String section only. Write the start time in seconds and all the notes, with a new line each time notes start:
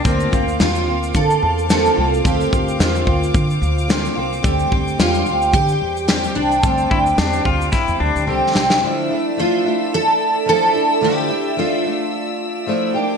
0.05 C5 F5 D6
4.44 G5
8.83 D5 E5 E6
12.94 A#3 D4 G5 D6